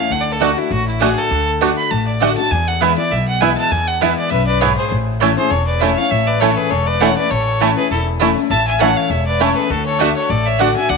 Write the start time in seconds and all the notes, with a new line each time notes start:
Already playing: E4 F5
0.00 C#4
0.10 D2 D3 F#5
0.21 D5
0.32 A4
0.40 D3 A3 D4 F#4 D5 F#5
0.57 D4 E4 F#4
0.70 A1 A2 F#4
0.88 E4
1.00 D3 A3 D4 F#4 G#4 D5 F#5
1.18 A4
1.31 D2 D3
1.61 D3 A3 D4 F#4 D5 F#5
1.77 B5
1.91 A1 A2 A5
2.07 D5
2.20 D3 A3 D4 F#4 D5 F#5
2.38 D4 F#4 A5
2.51 E2 G#5
2.68 F#5
2.81 E3 G#3 B3 E4 B4 E5 G#5
2.97 B3 E4 D5
3.11 B1 B2 E5
3.28 F#5
3.41 E3 G#3 B3 E4 B4 G#5
3.58 A5
3.71 E2 G#5
3.87 F#5
4.01 E3 G#3 B3 E4 B4 E5 G#5
4.18 D5
4.30 B1 F#2 B4 E5
4.47 B4 D5
4.61 G#2 B3 E4 G#4 B4 C#5 G#5
4.77 G#4 C5
4.91 A1 A2
5.20 E3 A3 C#4 E4 C#5 A5
5.37 C#4 E4 G#4 C5
5.50 E1 E2 A4 C#5
5.67 B4 D5
5.80 E3 A3 C#4 E4 C#5 E5 A5
5.97 C#4 E4 C#5 F5
6.11 A1 A2 C#5 E5
6.26 B4 D5
6.40 E3 A3 C#4 E4 A4 C#5 A5
6.57 G#4 B4
6.71 E1 E2 A4 C#5
6.87 B4 D5
7.00 E3 A3 C#4 E4 C#5 F#5 A5
7.17 C#4 E4 B4 D5
7.30 A1 A2 A4 C#5
7.60 E3 A3 C#4 E4 C#5 A5
7.77 C#4 E4 G#4 B4
7.91 E1 E4 A4
8.20 E3 A3 C#4 E4 C#5 A5
8.37 C#4 E4
8.50 A1 A2 E5 A5
8.66 E5 G#5
8.79 E3 A3 C#4 E4 C#5 F#5 A5
8.97 C#5 F5
9.10 E1 E2 C#5 E5
9.26 B4 D5
9.40 E3 A3 C#4 E4 A4 C#5 A5
9.56 G#4 B4
9.70 D2 D3 F#4 A4
9.86 A4 C#5
9.99 D3 A3 D4 F#4 A4 D5 E5 F#5
10.16 A4 C#5
10.30 A1 A2 A4 D5
10.46 C#5 E5
10.59 D3 A3 D4 F#4 D5 F#5
10.76 D4 F#4 E5 G#5
10.90 D2 D3 D5 F#5